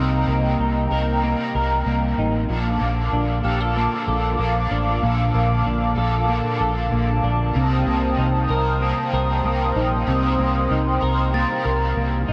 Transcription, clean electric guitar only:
Already playing: C3 A#3 D#4 A#4
0.29 A#3
0.60 D#4
0.92 A#4
1.24 A#3
1.55 A#4
1.87 A#3
2.19 D#4
2.82 A#3
3.13 D4
3.45 G4
3.61 A4
3.76 A#3
4.08 A4
4.40 A#3
4.72 D4
5.03 A#2
5.34 A#3
5.66 D4
5.98 A4
6.29 A#3
6.61 A4
6.92 A#3
7.24 D4
7.55 C3
7.87 A#3
8.19 D#4
8.50 A#4
8.82 A#3
9.14 A#4
9.45 A#3
9.76 D#4
10.08 C3
10.39 A#3
10.71 D#4
11.02 A#4
11.34 A#3
11.65 A#4
11.97 A#3
12.28 D#4

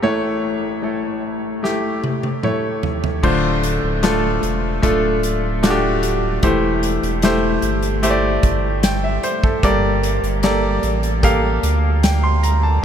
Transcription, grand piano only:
0.02 A1 A2 A3 E4 C#5
0.82 A3 E4 A4
1.63 A3 E4 G4
2.43 A3 E4 C#5
3.23 D3 A3 D4 F4 C5
4.03 A3 D4 F4 A4
4.82 A3 D4 F4 A4
5.63 A3 D4 F4 F#4
5.70 G4
6.43 E3 A3 E4 G4 C5
7.23 A3 E4 G4 C5
8.03 A3 E4 G4 C5
8.10 D5
8.84 G5
9.04 E5
9.24 C5
9.44 A4
9.63 G2 A#3 G4 A4 D5
10.43 A#3 G4 A4 D5
11.23 A#3 G4 A4 F5
12.03 G5
12.24 C6
12.43 A#5
12.63 A5

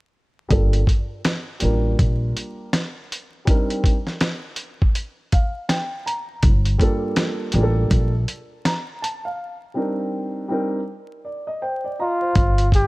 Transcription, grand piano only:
0.49 G3 A#3 D4 F4 A4
1.60 G3 A#3 D4 F4 A#4
3.45 G3 C4 D4 D#4 A#4
5.32 F5
5.69 G5
6.06 A#5
6.78 G3 A#3 D4 F4 A4
7.53 G3 A#3 D4 F4 G#4
7.63 A4
8.66 A#5
9.02 A5
9.25 F5
9.74 G3 C4 D4 D#4 A#4
10.48 G3 C4 D4 D#4 A#4
11.25 D5
11.47 D#5
11.62 C5 G5
11.84 D5
11.99 D#5 A#5
12.21 C5

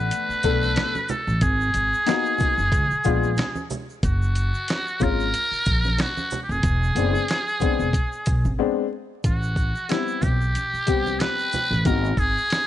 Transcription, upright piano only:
Already playing: A3 B3 D4 F#5
0.44 A3 B3 D4 A4
2.06 A#3 B3 D#4 F#4
3.04 G#3 B3 D4 F4
5.00 G#3 A#3 C#4 F4
6.96 G#3 B3 C4 D4
7.60 G#3 B3 C4 D4
8.59 G#3 B3 C4 D4
9.89 G3 B3 C4 E4
10.86 G3 B3 C4 G4
11.85 A#3 B3 D#4 F#4

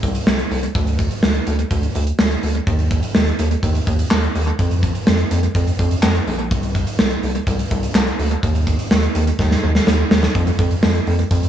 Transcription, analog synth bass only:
0.03 C2
0.27 C2
0.51 C2
0.75 D2
1.23 D2
1.47 D2
1.71 D2
1.95 D2
2.19 D2
2.43 D2
2.67 D#2
3.15 D#2
3.39 D#2
3.63 D#2
3.87 D#2
4.11 D#2
4.35 D#2
4.59 F2
5.07 F2
5.31 F2
5.55 F2
5.79 F2
6.03 F2
6.27 A#1
6.51 C2
6.99 C2
7.23 C2
7.47 C2
7.71 C2
7.95 C2
8.19 D2
8.43 D#2
8.91 D#2
9.15 D#2
9.39 D#2
9.63 D#2
9.87 D#2
10.11 D#2
10.35 F2
10.59 F2
10.83 F2
11.07 F2
11.31 F2

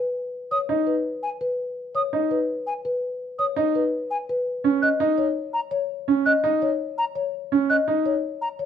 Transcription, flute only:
0.51 D#6
1.23 G#5
1.95 D#6
2.67 G#5
3.39 D#6
4.11 G#5
4.82 F#6
5.53 A#5
6.26 F#6
6.98 A#5
7.70 F#6
8.42 A#5

